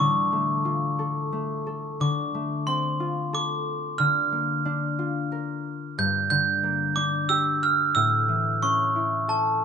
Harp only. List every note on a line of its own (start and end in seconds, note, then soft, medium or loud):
0.00 1.99 D3 medium
0.00 0.47 B3 medium
0.32 1.32 A3 soft
0.65 3.00 F4 medium
0.99 1.66 A4 soft
1.33 2.34 A3 soft
1.67 3.33 A4 medium
2.00 3.98 D3 medium
2.34 4.38 A3 soft
2.67 5.67 C4 medium
3.00 4.98 F4 medium
3.33 4.38 A4 medium
3.99 6.04 D3 medium
4.32 6.63 A#3 soft
4.65 6.96 D4 medium
4.99 7.51 F4 medium
5.32 7.44 A#4 medium
5.98 8.01 G2 medium
6.31 8.01 D3 soft
6.63 8.02 A#3 medium
6.97 8.68 D4 medium
7.29 9.65 G4 medium
7.96 9.65 A2 medium
8.29 9.65 E3 soft
8.62 9.65 C#4 medium
8.95 9.65 E4 medium
9.28 9.65 A4 medium